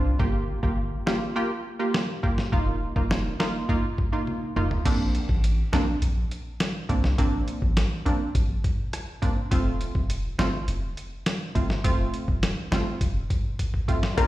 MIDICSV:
0, 0, Header, 1, 6, 480
1, 0, Start_track
1, 0, Tempo, 582524
1, 161, Time_signature, 4, 2, 24, 8
1, 11759, End_track
2, 0, Start_track
2, 0, Title_t, "Steel pan"
2, 0, Program_c, 0, 114
2, 11681, Note_on_c, 0, 70, 101
2, 11759, Note_off_c, 0, 70, 0
2, 11759, End_track
3, 0, Start_track
3, 0, Title_t, "Synth stab"
3, 0, Program_c, 1, 62
3, 0, Note_on_c, 1, 60, 78
3, 0, Note_on_c, 1, 62, 71
3, 0, Note_on_c, 1, 65, 84
3, 140, Note_off_c, 1, 60, 0
3, 142, Note_off_c, 1, 62, 0
3, 143, Note_off_c, 1, 65, 0
3, 158, Note_on_c, 1, 58, 93
3, 161, Note_on_c, 1, 65, 83
3, 163, Note_on_c, 1, 67, 100
3, 491, Note_off_c, 1, 58, 0
3, 492, Note_off_c, 1, 65, 0
3, 493, Note_off_c, 1, 67, 0
3, 517, Note_on_c, 1, 58, 72
3, 520, Note_on_c, 1, 65, 68
3, 522, Note_on_c, 1, 67, 84
3, 850, Note_off_c, 1, 58, 0
3, 851, Note_off_c, 1, 65, 0
3, 853, Note_off_c, 1, 67, 0
3, 877, Note_on_c, 1, 58, 80
3, 880, Note_on_c, 1, 65, 70
3, 883, Note_on_c, 1, 67, 87
3, 1100, Note_off_c, 1, 58, 0
3, 1101, Note_off_c, 1, 65, 0
3, 1102, Note_off_c, 1, 67, 0
3, 1118, Note_on_c, 1, 58, 99
3, 1120, Note_on_c, 1, 65, 90
3, 1123, Note_on_c, 1, 67, 106
3, 1241, Note_off_c, 1, 58, 0
3, 1242, Note_off_c, 1, 65, 0
3, 1244, Note_off_c, 1, 67, 0
3, 1478, Note_on_c, 1, 58, 80
3, 1480, Note_on_c, 1, 65, 72
3, 1483, Note_on_c, 1, 67, 85
3, 1810, Note_off_c, 1, 58, 0
3, 1812, Note_off_c, 1, 65, 0
3, 1813, Note_off_c, 1, 67, 0
3, 1838, Note_on_c, 1, 58, 79
3, 1840, Note_on_c, 1, 65, 69
3, 1843, Note_on_c, 1, 67, 84
3, 2060, Note_off_c, 1, 58, 0
3, 2061, Note_off_c, 1, 65, 0
3, 2062, Note_off_c, 1, 67, 0
3, 2078, Note_on_c, 1, 58, 89
3, 2080, Note_on_c, 1, 63, 85
3, 2083, Note_on_c, 1, 65, 107
3, 2410, Note_off_c, 1, 58, 0
3, 2412, Note_off_c, 1, 63, 0
3, 2413, Note_off_c, 1, 65, 0
3, 2438, Note_on_c, 1, 58, 79
3, 2441, Note_on_c, 1, 63, 68
3, 2443, Note_on_c, 1, 65, 83
3, 2771, Note_off_c, 1, 58, 0
3, 2772, Note_off_c, 1, 63, 0
3, 2773, Note_off_c, 1, 65, 0
3, 2798, Note_on_c, 1, 58, 79
3, 2801, Note_on_c, 1, 63, 75
3, 2803, Note_on_c, 1, 65, 88
3, 3020, Note_off_c, 1, 58, 0
3, 3022, Note_off_c, 1, 63, 0
3, 3023, Note_off_c, 1, 65, 0
3, 3039, Note_on_c, 1, 58, 97
3, 3041, Note_on_c, 1, 63, 90
3, 3044, Note_on_c, 1, 65, 109
3, 3162, Note_off_c, 1, 58, 0
3, 3163, Note_off_c, 1, 63, 0
3, 3164, Note_off_c, 1, 65, 0
3, 3399, Note_on_c, 1, 58, 81
3, 3401, Note_on_c, 1, 63, 73
3, 3403, Note_on_c, 1, 65, 89
3, 3731, Note_off_c, 1, 58, 0
3, 3732, Note_off_c, 1, 63, 0
3, 3733, Note_off_c, 1, 65, 0
3, 3759, Note_on_c, 1, 58, 76
3, 3762, Note_on_c, 1, 63, 73
3, 3764, Note_on_c, 1, 65, 86
3, 3981, Note_off_c, 1, 58, 0
3, 3982, Note_off_c, 1, 63, 0
3, 3983, Note_off_c, 1, 65, 0
3, 3999, Note_on_c, 1, 58, 92
3, 4001, Note_on_c, 1, 60, 86
3, 4003, Note_on_c, 1, 62, 106
3, 4441, Note_off_c, 1, 58, 0
3, 4442, Note_off_c, 1, 60, 0
3, 4444, Note_off_c, 1, 62, 0
3, 4718, Note_on_c, 1, 58, 81
3, 4720, Note_on_c, 1, 60, 73
3, 4723, Note_on_c, 1, 62, 90
3, 4841, Note_off_c, 1, 58, 0
3, 4842, Note_off_c, 1, 60, 0
3, 4844, Note_off_c, 1, 62, 0
3, 5678, Note_on_c, 1, 58, 79
3, 5680, Note_on_c, 1, 60, 72
3, 5683, Note_on_c, 1, 62, 88
3, 5801, Note_off_c, 1, 58, 0
3, 5802, Note_off_c, 1, 60, 0
3, 5804, Note_off_c, 1, 62, 0
3, 5917, Note_on_c, 1, 58, 96
3, 5919, Note_on_c, 1, 60, 87
3, 5922, Note_on_c, 1, 62, 103
3, 6361, Note_off_c, 1, 58, 0
3, 6362, Note_off_c, 1, 60, 0
3, 6363, Note_off_c, 1, 62, 0
3, 6637, Note_on_c, 1, 58, 77
3, 6640, Note_on_c, 1, 60, 71
3, 6642, Note_on_c, 1, 62, 91
3, 6761, Note_off_c, 1, 58, 0
3, 6762, Note_off_c, 1, 60, 0
3, 6763, Note_off_c, 1, 62, 0
3, 7597, Note_on_c, 1, 58, 82
3, 7600, Note_on_c, 1, 60, 72
3, 7602, Note_on_c, 1, 62, 82
3, 7721, Note_off_c, 1, 58, 0
3, 7722, Note_off_c, 1, 60, 0
3, 7723, Note_off_c, 1, 62, 0
3, 7837, Note_on_c, 1, 57, 93
3, 7840, Note_on_c, 1, 60, 89
3, 7843, Note_on_c, 1, 65, 102
3, 8280, Note_off_c, 1, 57, 0
3, 8282, Note_off_c, 1, 60, 0
3, 8283, Note_off_c, 1, 65, 0
3, 8558, Note_on_c, 1, 57, 82
3, 8560, Note_on_c, 1, 60, 76
3, 8563, Note_on_c, 1, 65, 91
3, 8681, Note_off_c, 1, 57, 0
3, 8682, Note_off_c, 1, 60, 0
3, 8684, Note_off_c, 1, 65, 0
3, 9518, Note_on_c, 1, 57, 79
3, 9520, Note_on_c, 1, 60, 73
3, 9522, Note_on_c, 1, 65, 86
3, 9641, Note_off_c, 1, 57, 0
3, 9642, Note_off_c, 1, 60, 0
3, 9644, Note_off_c, 1, 65, 0
3, 9757, Note_on_c, 1, 57, 95
3, 9759, Note_on_c, 1, 60, 88
3, 9762, Note_on_c, 1, 65, 107
3, 10201, Note_off_c, 1, 57, 0
3, 10202, Note_off_c, 1, 60, 0
3, 10203, Note_off_c, 1, 65, 0
3, 10478, Note_on_c, 1, 57, 81
3, 10480, Note_on_c, 1, 60, 76
3, 10483, Note_on_c, 1, 65, 93
3, 10601, Note_off_c, 1, 57, 0
3, 10602, Note_off_c, 1, 60, 0
3, 10603, Note_off_c, 1, 65, 0
3, 11437, Note_on_c, 1, 57, 79
3, 11440, Note_on_c, 1, 60, 73
3, 11442, Note_on_c, 1, 65, 84
3, 11561, Note_off_c, 1, 57, 0
3, 11562, Note_off_c, 1, 60, 0
3, 11563, Note_off_c, 1, 65, 0
3, 11677, Note_on_c, 1, 58, 93
3, 11680, Note_on_c, 1, 62, 86
3, 11682, Note_on_c, 1, 65, 110
3, 11759, Note_off_c, 1, 58, 0
3, 11759, Note_off_c, 1, 62, 0
3, 11759, Note_off_c, 1, 65, 0
3, 11759, End_track
4, 0, Start_track
4, 0, Title_t, "String section"
4, 0, Program_c, 2, 48
4, 11681, Note_on_c, 2, 53, 74
4, 11681, Note_on_c, 2, 58, 67
4, 11681, Note_on_c, 2, 62, 84
4, 11759, Note_off_c, 2, 53, 0
4, 11759, Note_off_c, 2, 58, 0
4, 11759, Note_off_c, 2, 62, 0
4, 11759, End_track
5, 0, Start_track
5, 0, Title_t, "Sub bass"
5, 0, Program_c, 3, 38
5, 0, Note_on_c, 3, 36, 91
5, 108, Note_off_c, 3, 36, 0
5, 161, Note_on_c, 3, 31, 102
5, 440, Note_off_c, 3, 31, 0
5, 520, Note_on_c, 3, 31, 93
5, 799, Note_off_c, 3, 31, 0
5, 2081, Note_on_c, 3, 29, 106
5, 2360, Note_off_c, 3, 29, 0
5, 2439, Note_on_c, 3, 29, 102
5, 2719, Note_off_c, 3, 29, 0
5, 3761, Note_on_c, 3, 29, 92
5, 3947, Note_off_c, 3, 29, 0
5, 4001, Note_on_c, 3, 34, 101
5, 4280, Note_off_c, 3, 34, 0
5, 4360, Note_on_c, 3, 33, 91
5, 4639, Note_off_c, 3, 33, 0
5, 4720, Note_on_c, 3, 34, 96
5, 4906, Note_off_c, 3, 34, 0
5, 4960, Note_on_c, 3, 34, 114
5, 5146, Note_off_c, 3, 34, 0
5, 5682, Note_on_c, 3, 36, 93
5, 5867, Note_off_c, 3, 36, 0
5, 5921, Note_on_c, 3, 34, 104
5, 6107, Note_off_c, 3, 34, 0
5, 6279, Note_on_c, 3, 33, 83
5, 6466, Note_off_c, 3, 33, 0
5, 6641, Note_on_c, 3, 34, 96
5, 6734, Note_off_c, 3, 34, 0
5, 6880, Note_on_c, 3, 34, 100
5, 7066, Note_off_c, 3, 34, 0
5, 7841, Note_on_c, 3, 29, 107
5, 8120, Note_off_c, 3, 29, 0
5, 8199, Note_on_c, 3, 29, 92
5, 8479, Note_off_c, 3, 29, 0
5, 8560, Note_on_c, 3, 31, 101
5, 8746, Note_off_c, 3, 31, 0
5, 8801, Note_on_c, 3, 29, 101
5, 8986, Note_off_c, 3, 29, 0
5, 9522, Note_on_c, 3, 31, 92
5, 9761, Note_on_c, 3, 29, 108
5, 9773, Note_off_c, 3, 31, 0
5, 9947, Note_off_c, 3, 29, 0
5, 10119, Note_on_c, 3, 29, 86
5, 10306, Note_off_c, 3, 29, 0
5, 10480, Note_on_c, 3, 31, 97
5, 10573, Note_off_c, 3, 31, 0
5, 10719, Note_on_c, 3, 29, 106
5, 10906, Note_off_c, 3, 29, 0
5, 11681, Note_on_c, 3, 34, 113
5, 11759, Note_off_c, 3, 34, 0
5, 11759, End_track
6, 0, Start_track
6, 0, Title_t, "Drums"
6, 161, Note_on_c, 9, 36, 117
6, 244, Note_off_c, 9, 36, 0
6, 520, Note_on_c, 9, 36, 92
6, 602, Note_off_c, 9, 36, 0
6, 882, Note_on_c, 9, 38, 113
6, 964, Note_off_c, 9, 38, 0
6, 1602, Note_on_c, 9, 37, 85
6, 1602, Note_on_c, 9, 38, 105
6, 1684, Note_off_c, 9, 37, 0
6, 1684, Note_off_c, 9, 38, 0
6, 1842, Note_on_c, 9, 36, 96
6, 1925, Note_off_c, 9, 36, 0
6, 1961, Note_on_c, 9, 38, 70
6, 2044, Note_off_c, 9, 38, 0
6, 2081, Note_on_c, 9, 36, 115
6, 2164, Note_off_c, 9, 36, 0
6, 2440, Note_on_c, 9, 36, 94
6, 2522, Note_off_c, 9, 36, 0
6, 2562, Note_on_c, 9, 37, 66
6, 2562, Note_on_c, 9, 38, 119
6, 2644, Note_off_c, 9, 37, 0
6, 2644, Note_off_c, 9, 38, 0
6, 2802, Note_on_c, 9, 38, 113
6, 2884, Note_off_c, 9, 38, 0
6, 3040, Note_on_c, 9, 36, 101
6, 3122, Note_off_c, 9, 36, 0
6, 3282, Note_on_c, 9, 36, 95
6, 3364, Note_off_c, 9, 36, 0
6, 3521, Note_on_c, 9, 48, 55
6, 3604, Note_off_c, 9, 48, 0
6, 3761, Note_on_c, 9, 45, 88
6, 3843, Note_off_c, 9, 45, 0
6, 3881, Note_on_c, 9, 43, 87
6, 3964, Note_off_c, 9, 43, 0
6, 4001, Note_on_c, 9, 36, 116
6, 4001, Note_on_c, 9, 42, 90
6, 4001, Note_on_c, 9, 49, 89
6, 4083, Note_off_c, 9, 42, 0
6, 4083, Note_off_c, 9, 49, 0
6, 4084, Note_off_c, 9, 36, 0
6, 4241, Note_on_c, 9, 42, 51
6, 4324, Note_off_c, 9, 42, 0
6, 4360, Note_on_c, 9, 36, 91
6, 4442, Note_off_c, 9, 36, 0
6, 4482, Note_on_c, 9, 42, 83
6, 4564, Note_off_c, 9, 42, 0
6, 4722, Note_on_c, 9, 38, 122
6, 4723, Note_on_c, 9, 42, 52
6, 4804, Note_off_c, 9, 38, 0
6, 4805, Note_off_c, 9, 42, 0
6, 4960, Note_on_c, 9, 42, 79
6, 5043, Note_off_c, 9, 42, 0
6, 5203, Note_on_c, 9, 42, 52
6, 5285, Note_off_c, 9, 42, 0
6, 5440, Note_on_c, 9, 42, 82
6, 5441, Note_on_c, 9, 37, 88
6, 5441, Note_on_c, 9, 38, 111
6, 5522, Note_off_c, 9, 42, 0
6, 5524, Note_off_c, 9, 37, 0
6, 5524, Note_off_c, 9, 38, 0
6, 5681, Note_on_c, 9, 42, 48
6, 5682, Note_on_c, 9, 36, 92
6, 5763, Note_off_c, 9, 42, 0
6, 5765, Note_off_c, 9, 36, 0
6, 5801, Note_on_c, 9, 38, 70
6, 5883, Note_off_c, 9, 38, 0
6, 5920, Note_on_c, 9, 42, 86
6, 5921, Note_on_c, 9, 36, 117
6, 6002, Note_off_c, 9, 42, 0
6, 6003, Note_off_c, 9, 36, 0
6, 6161, Note_on_c, 9, 42, 52
6, 6243, Note_off_c, 9, 42, 0
6, 6279, Note_on_c, 9, 36, 89
6, 6362, Note_off_c, 9, 36, 0
6, 6401, Note_on_c, 9, 42, 83
6, 6402, Note_on_c, 9, 38, 114
6, 6483, Note_off_c, 9, 42, 0
6, 6484, Note_off_c, 9, 38, 0
6, 6643, Note_on_c, 9, 42, 52
6, 6725, Note_off_c, 9, 42, 0
6, 6880, Note_on_c, 9, 36, 105
6, 6880, Note_on_c, 9, 42, 75
6, 6962, Note_off_c, 9, 36, 0
6, 6963, Note_off_c, 9, 42, 0
6, 7122, Note_on_c, 9, 36, 94
6, 7122, Note_on_c, 9, 42, 54
6, 7204, Note_off_c, 9, 36, 0
6, 7205, Note_off_c, 9, 42, 0
6, 7360, Note_on_c, 9, 42, 82
6, 7362, Note_on_c, 9, 37, 85
6, 7443, Note_off_c, 9, 42, 0
6, 7444, Note_off_c, 9, 37, 0
6, 7601, Note_on_c, 9, 42, 49
6, 7602, Note_on_c, 9, 36, 97
6, 7683, Note_off_c, 9, 42, 0
6, 7685, Note_off_c, 9, 36, 0
6, 7841, Note_on_c, 9, 36, 115
6, 7841, Note_on_c, 9, 42, 91
6, 7923, Note_off_c, 9, 36, 0
6, 7923, Note_off_c, 9, 42, 0
6, 8081, Note_on_c, 9, 42, 52
6, 8163, Note_off_c, 9, 42, 0
6, 8199, Note_on_c, 9, 36, 94
6, 8282, Note_off_c, 9, 36, 0
6, 8321, Note_on_c, 9, 42, 81
6, 8403, Note_off_c, 9, 42, 0
6, 8562, Note_on_c, 9, 38, 121
6, 8562, Note_on_c, 9, 42, 51
6, 8644, Note_off_c, 9, 38, 0
6, 8645, Note_off_c, 9, 42, 0
6, 8800, Note_on_c, 9, 42, 74
6, 8882, Note_off_c, 9, 42, 0
6, 9042, Note_on_c, 9, 42, 54
6, 9124, Note_off_c, 9, 42, 0
6, 9280, Note_on_c, 9, 42, 82
6, 9281, Note_on_c, 9, 37, 88
6, 9281, Note_on_c, 9, 38, 102
6, 9362, Note_off_c, 9, 42, 0
6, 9364, Note_off_c, 9, 37, 0
6, 9364, Note_off_c, 9, 38, 0
6, 9521, Note_on_c, 9, 42, 51
6, 9522, Note_on_c, 9, 36, 97
6, 9603, Note_off_c, 9, 42, 0
6, 9604, Note_off_c, 9, 36, 0
6, 9641, Note_on_c, 9, 38, 73
6, 9723, Note_off_c, 9, 38, 0
6, 9760, Note_on_c, 9, 42, 90
6, 9761, Note_on_c, 9, 36, 114
6, 9843, Note_off_c, 9, 36, 0
6, 9843, Note_off_c, 9, 42, 0
6, 10001, Note_on_c, 9, 42, 53
6, 10083, Note_off_c, 9, 42, 0
6, 10119, Note_on_c, 9, 36, 93
6, 10202, Note_off_c, 9, 36, 0
6, 10241, Note_on_c, 9, 42, 82
6, 10242, Note_on_c, 9, 37, 69
6, 10242, Note_on_c, 9, 38, 121
6, 10323, Note_off_c, 9, 42, 0
6, 10324, Note_off_c, 9, 37, 0
6, 10324, Note_off_c, 9, 38, 0
6, 10482, Note_on_c, 9, 38, 116
6, 10482, Note_on_c, 9, 42, 53
6, 10564, Note_off_c, 9, 38, 0
6, 10565, Note_off_c, 9, 42, 0
6, 10719, Note_on_c, 9, 36, 107
6, 10720, Note_on_c, 9, 42, 77
6, 10802, Note_off_c, 9, 36, 0
6, 10802, Note_off_c, 9, 42, 0
6, 10961, Note_on_c, 9, 36, 96
6, 10962, Note_on_c, 9, 42, 53
6, 11044, Note_off_c, 9, 36, 0
6, 11045, Note_off_c, 9, 42, 0
6, 11200, Note_on_c, 9, 36, 57
6, 11200, Note_on_c, 9, 42, 85
6, 11283, Note_off_c, 9, 36, 0
6, 11283, Note_off_c, 9, 42, 0
6, 11321, Note_on_c, 9, 36, 60
6, 11403, Note_off_c, 9, 36, 0
6, 11441, Note_on_c, 9, 36, 93
6, 11442, Note_on_c, 9, 42, 52
6, 11523, Note_off_c, 9, 36, 0
6, 11524, Note_off_c, 9, 42, 0
6, 11561, Note_on_c, 9, 38, 89
6, 11643, Note_off_c, 9, 38, 0
6, 11681, Note_on_c, 9, 36, 117
6, 11681, Note_on_c, 9, 42, 91
6, 11681, Note_on_c, 9, 60, 88
6, 11759, Note_off_c, 9, 36, 0
6, 11759, Note_off_c, 9, 42, 0
6, 11759, Note_off_c, 9, 60, 0
6, 11759, End_track
0, 0, End_of_file